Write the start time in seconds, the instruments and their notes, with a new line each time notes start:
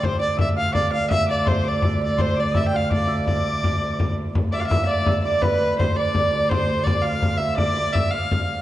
Already playing: hammered dulcimer D5 E5 G5
0.00 viola da gamba D2, hammered dulcimer C5, shawm C6, frame drum
0.05 fiddle C5
0.19 hammered dulcimer D5, fiddle D5, shawm D6
0.37 hammered dulcimer E5, shawm E6, frame drum
0.41 fiddle E5
0.56 hammered dulcimer F5, shawm F5, fiddle F5
0.73 hammered dulcimer D5, fiddle D5, shawm D6, frame drum
0.92 shawm F5, fiddle F5, hammered dulcimer F5
1.10 fiddle E5, hammered dulcimer E5, shawm E6, frame drum
1.27 hammered dulcimer D5, fiddle D5, shawm D6
1.45 hammered dulcimer C5, fiddle C5, shawm C6, frame drum
1.64 hammered dulcimer D5, shawm D6
1.68 fiddle D5
1.82 hammered dulcimer E5, frame drum
2.00 hammered dulcimer D5, fiddle D5
2.18 hammered dulcimer C5, fiddle C5, shawm C6, frame drum
2.36 hammered dulcimer D5, shawm D6
2.40 fiddle D5
2.54 hammered dulcimer E5, fiddle E5, shawm E6, frame drum
2.68 fiddle G5
2.74 shawm F5, hammered dulcimer F5, fiddle F5
2.90 hammered dulcimer D5, fiddle D5, shawm D6, frame drum
3.07 hammered dulcimer E5
3.26 hammered dulcimer D5, fiddle D5, shawm D6, frame drum
3.46 frame drum
3.64 frame drum
4.00 frame drum
4.35 viola da gamba D2, frame drum
4.52 fiddle D5 E5, hammered dulcimer D5, shawm D6, frame drum
4.56 fiddle D5 F5, hammered dulcimer D5, shawm D6
4.61 hammered dulcimer F5, shawm F5
4.67 fiddle E5, hammered dulcimer E5
4.71 shawm E6, frame drum
4.86 fiddle D5, hammered dulcimer D5
4.90 shawm D6
5.06 shawm E6, frame drum
5.24 fiddle D5, hammered dulcimer D5, shawm D6
5.42 fiddle B4, hammered dulcimer B4, shawm B5, frame drum
5.61 frame drum
5.78 hammered dulcimer C5, fiddle C5, shawm C6, frame drum
5.96 fiddle D5, hammered dulcimer D5, shawm D6
6.15 frame drum
6.33 hammered dulcimer D5
6.50 fiddle C5, hammered dulcimer C5, shawm C6, frame drum
6.69 frame drum
6.84 fiddle D5, shawm D6, frame drum
7.02 fiddle F5, shawm F5, hammered dulcimer F5
7.22 shawm F5, frame drum
7.38 fiddle E5, hammered dulcimer E5, shawm E6
7.57 fiddle D5, hammered dulcimer D5, shawm D6, frame drum
7.77 hammered dulcimer D5
7.93 fiddle E5, hammered dulcimer E5, shawm E6, frame drum
8.11 fiddle F5, shawm F5, hammered dulcimer F5, frame drum
8.32 frame drum
8.50 frame drum